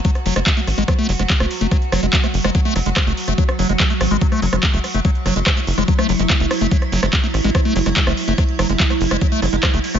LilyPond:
<<
  \new Staff \with { instrumentName = "Ambient pad" } { \time 4/4 \key fis \minor \tempo 4 = 144 <fis fis'>1~ | <fis fis'>1~ | <fis fis'>1 | e'1~ |
e'1~ | e'1 | }
  \new Staff \with { instrumentName = "Acid bass" } { \clef bass \time 4/4 \key fis \minor fis16 r16 fis16 gis16 fis16 a16 r16 gis16 fis16 a16 fis16 gis16 fis16 a16 r16 a16 | fis16 r16 fis16 gis16 fis16 a16 r16 gis16 fis16 a16 fis16 gis16 fis16 a16 r16 a16 | fis16 r16 fis16 gis16 fis16 a16 r16 gis16 fis16 a16 fis16 gis16 fis16 a16 r16 a16 | fis16 r16 fis16 gis16 fis16 a16 r16 gis16 fis16 a16 fis16 gis16 fis16 a16 r16 a16 |
fis16 r16 fis16 gis16 fis16 a16 r16 gis16 fis16 a16 fis16 gis16 fis16 a16 r16 a16 | fis16 r16 fis16 gis16 fis16 a16 r16 gis16 fis16 a16 fis16 gis16 fis16 a16 r16 a16 | }
  \new Staff \with { instrumentName = "Analog synth bass" } { \clef bass \time 4/4 \key fis \minor r8 fis,,16 fis,,16 r8 a,,16 a,,16 r8 fis,,16 fis,,16 r16 fis,,16 r16 fis,,16 | r8 fis,,16 fis,,16 r8 fis,,16 fis,,16 r8 fis,,16 fis,,16 r16 fis,,16 r16 fis,,16 | r8 fis,,16 fis,,16 r8 a,,16 a,,16 r8 fis,,16 fis,,16 r16 fis,,16 r16 fis,,16 | r8 fis,,16 fis,,16 r8 fis,,16 fis,,16 r8 fis,,16 fis,,16 r16 fis,,16 r16 fis,,16 |
r8 fis,,16 fis,,16 r8 a,,16 a,,16 r8 fis,,16 fis,,16 r16 fis,,16 r16 fis,,16 | r8 fis,,16 fis,,16 r8 fis,,16 fis,,16 r8 fis,,16 fis,,16 r16 fis,,16 r16 fis,,16 | }
  \new DrumStaff \with { instrumentName = "Drums" } \drummode { \time 4/4 <hh bd>16 <hh ss>16 hho16 <hh ss>16 <hc hh bd>16 hh16 <hho ss>16 hh16 <hh bd ss>16 hh16 hho16 <hh ss>16 <hc hh bd>16 <hh ss>16 hho16 hh16 | <hh bd ss>16 hh16 <hho ss>16 hh16 <hc hh bd>16 <hh ss>16 hho16 <hh ss>16 <hh bd>16 hh16 <hho ss>16 hh16 <hc hh bd ss>16 hh16 hho16 <hh ss>16 | <hh bd>16 <hh ss>16 hho16 hh16 <hc hh bd ss>16 hh16 <hho ss>16 hh16 <hh bd>16 <hh ss>16 hho16 <hh ss>16 <hc hh bd>16 hh16 <hho ss>16 hh16 | <hh bd>16 hh16 <hho ss>16 hh16 <hc hh bd ss>16 hh16 hho16 <hh ss>16 <hh bd>16 <hh ss>16 hho16 hh16 <hc hh bd ss>16 hh16 <hho ss>16 hh16 |
<hh bd>16 <hh ss>16 hho16 <hh ss>16 <hc hh bd>16 hh16 <hho ss>16 hh16 <hh bd ss>16 hh16 hho16 <hh ss>16 <hc hh bd>16 <hh ss>16 hho16 hh16 | <hh bd ss>16 hh16 <hho ss>16 hh16 <hc hh bd>16 <hh ss>16 hho16 <hh ss>16 <hh bd>16 hh16 <hho ss>16 hh16 <hc hh bd ss>16 hh16 hho16 <hh ss>16 | }
>>